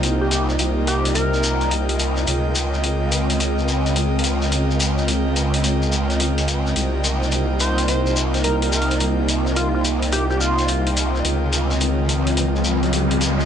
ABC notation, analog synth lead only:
X:1
M:4/4
L:1/16
Q:"Swing 16ths" 1/4=107
K:Cphr
V:1 name="Analog synth lead"
z G G z3 G2 B4 z4 | z16 | z16 | z6 c2 c2 z2 B B B2 |
z4 F F z2 G G F3 z3 | z16 |]